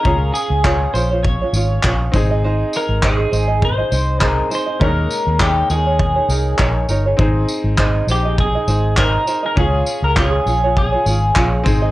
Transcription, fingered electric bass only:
X:1
M:4/4
L:1/16
Q:"Swing 16ths" 1/4=101
K:Ab
V:1 name="Fingered electric bass" clef=bass
D,,2 z D,,3 B,,,4 A,,,2 B,,,2 A,,,2- | A,,,2 z A,,,3 A,,,4 C,,4 z2 | E,,2 z E,,3 E,,4 C,,2 B,,,2 G,,,2 | A,,,2 z A,,,3 B,,,4 A,,,4 z2 |
D,,2 z D,,3 B,,,4 A,,,2 B,,,2 A,,,2 |]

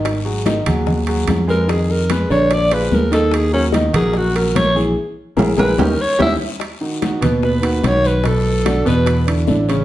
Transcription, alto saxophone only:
X:1
M:4/4
L:1/8
Q:1/4=146
K:Ebm
V:1 name="Alto saxophone"
z6 z B | A B c d =d c B =A | A D z A G B d z | z3 c B d _f z |
[K:B] z4 B2 c B | =A3 B2 z3 |]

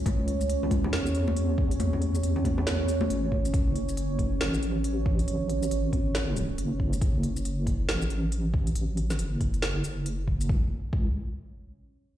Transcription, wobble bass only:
X:1
M:4/4
L:1/8
Q:"Swing 16ths" 1/4=138
K:F#dor
V:1 name="Wobble bass" clef=bass
z4 E,,4 | E,,2 E,,4 G,,,2 | F,,,4 A,,,4 | A,,,2 G,,,4 F,,,2 |
F,,,4 A,,,4 | A,,,2 F,,,3 F,,,3 | C,, z C,, z4 z |]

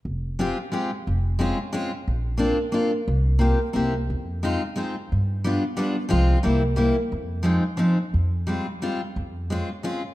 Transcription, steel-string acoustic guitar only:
X:1
M:3/4
L:1/8
Q:1/4=178
K:Fm
V:1 name="Steel-string acoustic guitar"
z2 [A,CFG] z [A,CFG] z | z2 [A,CDF] z [A,CDF] z | z2 [B,C=DF] z [B,CDF] z | z2 [B,CFG] z [B,C=EG] z |
z2 [A,CEF] z [A,CEF] z | z2 [G,=B,=DF] z [G,B,DF] z | [F,A,CF]2 [G,B,C=E] z [G,B,CE] z | z2 [F,A,CE] z [F,A,CE] z |
z2 [G,A,CF] z [G,A,CF] z | z2 [A,CDF] z [A,CDF] z |]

